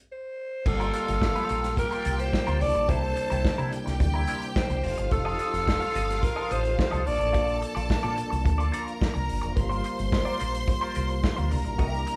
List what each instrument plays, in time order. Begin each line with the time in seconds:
0.12 alto saxophone C5
0.65 fingered electric bass G1, tonewheel organ G3 A#3 F4, string section F4 F5, alto saxophone A4, muted clean electric guitar stroke, kick, crash
0.80 clean electric guitar C4 F4 A#4, closed hi-hat
0.93 clean electric guitar C4 F4 A#4, closed hi-hat
1.08 fingered electric bass G1, muted clean electric guitar stroke, closed hi-hat
1.22 muted clean electric guitar stroke, kick, snare
1.35 clean electric guitar C4 F4 C5, closed hi-hat
1.49 fingered electric bass A#1, clean electric guitar C4 F4 A#4, closed hi-hat
1.63 muted clean electric guitar stroke, snare, closed hi-hat
1.77 string section G4 G5, alto saxophone A#4, muted clean electric guitar stroke, kick, closed hi-hat
1.91 clean electric guitar C4 F4 A#4, closed hi-hat
2.05 fingered electric bass C2, clean electric guitar C4 F4 A#4, closed hi-hat
2.19 alto saxophone C5, muted clean electric guitar stroke, closed hi-hat
2.33 muted clean electric guitar stroke, kick, snare
2.47 fingered electric bass D2, clean electric guitar C4 F4 A#4, closed hi-hat
2.60 fingered electric bass C2, tonewheel organ C3 D4 E4, string section A4 A5, alto saxophone D5, muted clean electric guitar stroke, open hi-hat
2.74 fingered electric bass A#1, muted clean electric guitar stroke, closed hi-hat
2.89 fingered electric bass C2, clean electric guitar C4 E4 A#4, alto saxophone C5, kick, closed hi-hat
3.02 muted clean electric guitar stroke
3.16 muted clean electric guitar stroke, closed hi-hat
3.30 fingered electric bass C2, clean electric guitar C4 E4 A#4, closed hi-hat
3.44 muted clean electric guitar stroke, muted fingered electric bass stroke, kick, snare
3.58 fingered electric bass C3, clean electric guitar C4 E4 A#4, closed hi-hat
3.72 string section G4 G5, muted clean electric guitar stroke, closed hi-hat
3.86 fingered electric bass C2, muted clean electric guitar stroke, snare, closed hi-hat
4.00 fingered electric bass D2, muted clean electric guitar stroke, kick, closed hi-hat
4.14 clean electric guitar C4 E4 A#4
4.28 clean electric guitar C4 E4 A#4, closed hi-hat
4.42 muted clean electric guitar stroke, closed hi-hat
4.56 alto saxophone C5, muted clean electric guitar stroke, kick, snare
4.70 fingered electric bass C2, muted clean electric guitar stroke, closed hi-hat
4.83 fingered electric bass F1, tonewheel organ F3 C4 D#4 G4 A4, string section F4 F5, open hi-hat
4.98 fingered electric bass G1, muted clean electric guitar stroke, closed hi-hat
5.11 fingered electric bass F1, alto saxophone A4, muted clean electric guitar stroke, kick, closed hi-hat
5.25 clean electric guitar F4 A4 D#5
5.39 clean electric guitar F4 A4 D#5, closed hi-hat
5.53 fingered electric bass F1, muted clean electric guitar stroke, closed hi-hat
5.67 muted clean electric guitar stroke, kick, snare
5.80 clean electric guitar F4 A4 F5, closed hi-hat
5.94 fingered electric bass G1, clean electric guitar F4 A4 D#5, closed hi-hat
6.09 muted clean electric guitar stroke, snare, closed hi-hat
6.22 alto saxophone A#4, muted clean electric guitar stroke, kick, closed hi-hat
6.36 clean electric guitar F4 A4 D#5
6.50 fingered electric bass A1, clean electric guitar F4 A4 D#5, alto saxophone C5, closed hi-hat
6.64 muted clean electric guitar stroke, closed hi-hat
6.78 alto saxophone C5, muted clean electric guitar stroke, kick, snare
6.91 fingered electric bass C2, clean electric guitar F4 A4 D#5, closed hi-hat
7.05 fingered electric bass A#1, tonewheel organ F3 A#3 D4, string section A4 A5, alto saxophone D5, muted clean electric guitar stroke, open hi-hat
7.20 fingered electric bass A1, muted clean electric guitar stroke, closed hi-hat
7.33 fingered electric bass A#1, clean electric guitar F4 A4 D5, kick, closed hi-hat
7.48 muted clean electric guitar stroke, closed hi-hat
7.61 muted clean electric guitar stroke, closed hi-hat
7.75 fingered electric bass A#1, clean electric guitar F4 A4 D5, closed hi-hat
7.89 muted clean electric guitar stroke, muted fingered electric bass stroke, kick, snare
8.03 fingered electric bass A#2, clean electric guitar F4 A4 D5, closed hi-hat
8.18 muted clean electric guitar stroke, closed hi-hat
8.30 fingered electric bass C2, muted clean electric guitar stroke, closed hi-hat
8.45 fingered electric bass D2, muted clean electric guitar stroke, kick, closed hi-hat
8.58 clean electric guitar F4 A4 D5, closed hi-hat
8.72 clean electric guitar F4 A4 D5, string section A#4 A#5, closed hi-hat
8.86 muted clean electric guitar stroke, closed hi-hat
9.00 muted clean electric guitar stroke, kick, snare
9.14 fingered electric bass C2, muted clean electric guitar stroke, closed hi-hat
9.29 fingered electric bass G1, open hi-hat
9.41 fingered electric bass F1, muted clean electric guitar stroke, closed hi-hat
9.55 fingered electric bass G1, tonewheel organ G3 F4, string section C5 C6, muted clean electric guitar stroke, kick, closed hi-hat
9.69 clean electric guitar F4 A#4 C5, closed hi-hat
9.84 clean electric guitar F4 A#4 C5, closed hi-hat
9.98 fingered electric bass G1, muted clean electric guitar stroke, closed hi-hat
10.12 muted clean electric guitar stroke, kick, snare
10.25 clean electric guitar F4 A#4 D5
10.39 fingered electric bass A#1, clean electric guitar F4 A#4 C5, closed hi-hat
10.54 muted clean electric guitar stroke, closed hi-hat
10.68 muted clean electric guitar stroke, kick, closed hi-hat
10.81 clean electric guitar F4 A#4 C5
10.95 fingered electric bass C2, clean electric guitar F4 A#4 C5, closed hi-hat
11.09 muted clean electric guitar stroke, closed hi-hat
11.23 muted clean electric guitar stroke, kick, snare
11.36 fingered electric bass D2, clean electric guitar F4 A#4 C5, closed hi-hat
11.51 fingered electric bass C2, tonewheel organ C3 D4 E4, string section A#4 A#5, muted clean electric guitar stroke, open hi-hat
11.65 fingered electric bass A#1, muted clean electric guitar stroke, closed hi-hat
11.78 fingered electric bass C2, clean electric guitar G4 A#4 E5, kick, closed hi-hat
11.93 muted clean electric guitar stroke, closed hi-hat
12.07 muted clean electric guitar stroke, closed hi-hat